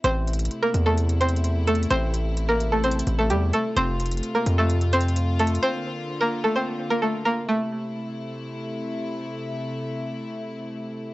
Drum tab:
HH |x-----------x--x--x--x--x-----------x-----------x-----x-----x---x---x---x-----------x---x---x---|x-----------x-----------x-----------x-----------x---x---x---x-----------x-----------x-----------|x-----------x--x--x--x--x-----------x-----------x-----x-----x---x---x---x-----------x---x---x---|------------------------------------------------------------------------------------------------|

HH |------------------------------------------------------------------------------------------------|------------------------------------------------------------------------------------------------|